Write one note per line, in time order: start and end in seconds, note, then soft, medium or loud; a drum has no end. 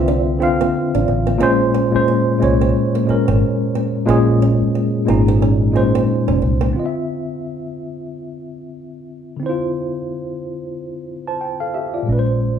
0.00 0.70 C2 medium
0.00 0.38 D3 loud
0.00 0.40 C4 loud
0.00 0.42 F4 medium
0.00 1.42 B4 medium
0.00 1.42 C5 loud
0.00 0.29 E5 medium
0.08 0.20 D4 medium
0.38 1.19 D3 medium
0.38 1.20 C4 medium
0.38 1.21 F4 medium
0.38 muted nylon-string guitar stroke soft
0.43 1.22 F5 medium
0.61 0.69 C4 medium
0.95 1.06 A1 loud
0.95 1.03 D4 medium
1.08 1.42 A1 medium
1.08 muted nylon-string guitar stroke soft
1.27 1.35 C4 medium
1.38 1.79 A#2 loud
1.38 1.80 G#3 medium
1.38 1.53 C4 medium
1.38 1.81 C#4 loud
1.42 1.88 A#1 loud
1.42 1.81 C5 loud
1.74 1.86 C#4 medium
1.91 2.30 A#2 medium
1.91 2.31 G#3 medium
1.91 2.32 C#4 medium
1.91 muted fingered electric bass stroke soft
1.96 2.32 C5 medium
2.08 muted nylon-string guitar stroke soft
2.38 2.94 A#2 medium
2.38 2.94 G#3 medium
2.38 2.95 C#4 medium
2.42 2.71 C2 medium
2.42 2.54 C4 medium
2.42 2.96 C#5 medium
2.61 2.69 C4 medium
2.95 3.03 A#3 medium
3.05 3.86 A#2 medium
3.05 3.87 G#3 medium
3.05 3.88 C#4 medium
3.05 muted nylon-string guitar stroke soft
3.05 muted fingered electric bass stroke soft
3.10 3.88 A#4 medium
3.28 3.40 G#1 medium
3.28 3.36 C4 medium
3.75 3.87 C4 medium
4.05 4.55 A#1 loud
4.05 4.86 A#2 loud
4.05 4.87 G#3 loud
4.05 4.20 C4 medium
4.05 4.88 C#4 loud
4.10 4.88 G#4 loud
4.42 4.54 C#4 medium
4.62 muted fingered electric bass stroke soft
4.75 muted nylon-string guitar stroke soft
5.05 6.04 G#1 medium
5.05 5.60 A#2 medium
5.05 5.61 G#3 medium
5.05 5.20 C4 medium
5.05 5.62 C#4 medium
5.10 5.63 D#4 medium
5.28 5.36 C4 medium
5.42 5.54 C#4 medium
5.72 6.53 A#2 medium
5.72 6.53 G#3 medium
5.72 6.54 C#4 medium
5.72 muted nylon-string guitar stroke soft
5.77 6.55 C5 medium
5.95 6.03 C4 medium
6.28 6.40 F1 medium
6.28 6.36 C#4 medium
6.42 6.71 C2 medium
6.42 muted nylon-string guitar stroke soft
6.61 6.69 C4 medium
6.69 9.34 D3 medium
6.69 9.36 C4 medium
6.76 9.37 F4 medium
6.76 6.84 D#5 soft
6.86 9.42 E5 medium
9.37 11.68 D3 medium
9.37 11.69 C4 medium
9.43 9.49 E4 soft
9.43 11.06 C5 medium
9.49 11.08 F4 medium
11.28 11.40 C5 soft
11.28 11.40 A5 medium
11.41 11.59 G5 medium
11.60 11.74 A4 soft
11.60 11.73 F5 medium
11.74 11.93 G4 soft
11.74 11.92 E5 medium
11.94 12.25 F4 soft
11.94 12.25 D5 soft
12.03 12.59 A#2 medium
12.03 12.59 G#3 medium
12.09 12.59 A#1 medium
12.09 12.59 C#4 medium
12.09 12.17 B4 medium
12.19 12.59 C5 medium